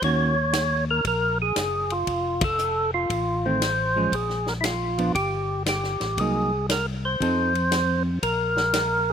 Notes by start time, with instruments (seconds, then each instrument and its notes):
0.02 tonewheel organ D#2 C#5, hollow-body jazz guitar D#3 A#3 C#4 F#4, kick, ride
0.53 snare, hi-hat pedal, ride
0.91 tonewheel organ A#4
1.04 tonewheel organ A#1 A#4, kick, ride
1.42 tonewheel organ G#4
1.56 tonewheel organ F#1, snare, hi-hat pedal, ride
1.90 tonewheel organ F4, ride
2.07 tonewheel organ F1, kick, ride
2.41 tonewheel organ A4, kick, ride
2.59 hi-hat pedal
2.94 tonewheel organ F4
3.10 tonewheel organ A1, kick, ride
3.45 hollow-body jazz guitar D#3 A3 C4, tonewheel organ C5
3.62 snare, hi-hat pedal, ride
3.96 hollow-body jazz guitar F3 G#3 C#4
4.12 tonewheel organ A#1 G#4, kick, ride
4.29 snare
4.47 tonewheel organ A#4, snare
4.61 tonewheel organ E4, snare, hi-hat pedal, ride
4.65 tonewheel organ F4
4.98 hollow-body jazz guitar F3 B3 D4, ride
5.15 tonewheel organ G1 G4, kick, ride
5.66 tonewheel organ G4, snare, hi-hat pedal, ride
5.83 snare
6.00 tonewheel organ A1, snare, ride
6.18 tonewheel organ C2 G#4, hollow-body jazz guitar F#3 A#3 D#4, kick, ride
6.69 tonewheel organ A#4, snare, hi-hat pedal, ride
7.05 tonewheel organ C5
7.20 tonewheel organ F2, hollow-body jazz guitar F3 C4 D#4 A4, kick, ride
7.55 ride
7.72 snare, hi-hat pedal, ride
8.23 tonewheel organ A#1 A#4, kick, ride
8.57 snare
8.73 snare, hi-hat pedal, ride
9.10 tonewheel organ G#4